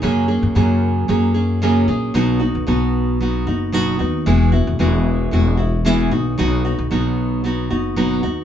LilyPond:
<<
  \new Staff \with { instrumentName = "Nylon-string guitar" } { \time 4/4 \key b \major \tempo 4 = 113 <fis, cis fis ais cis' gis'>8 <fis ais cis' gis'>8 <fis, cis fis ais cis' gis'>4 <fis ais cis' gis'>8 <fis ais cis' gis'>8 <fis, cis fis ais cis' gis'>8 <fis ais cis' gis'>8 | <b, fis b dis' fis'>8 <b dis' fis'>8 <b, fis b dis' fis'>4 <fis b dis' fis'>8 <b dis' fis'>8 <b, fis b dis' fis'>8 <b dis' fis'>8 | <e gis b e' fis'>8 <b e' fis'>8 <e gis b e' fis'>4 <gis b e' fis'>8 <b e' fis'>8 <e gis b e' fis'>8 <b dis' fis'>8 | <b, fis b dis' fis'>8 <b dis' fis'>8 <b, fis b dis' fis'>4 <fis b dis' fis'>8 <b dis' fis'>8 <b, fis b dis' fis'>8 <b dis' fis'>8 | }
  \new Staff \with { instrumentName = "Upright bass" } { \clef bass \time 4/4 \key b \major fis,8. fis,16 fis,4 fis,4. ais,,8 | b,,8. b,,16 b,,4. fis,,4 dis,8 | e,,8. e,,16 e,,4 e,,4. b,,8 | b,,8. b,,16 b,,4. fis,,4 dis,8 | }
>>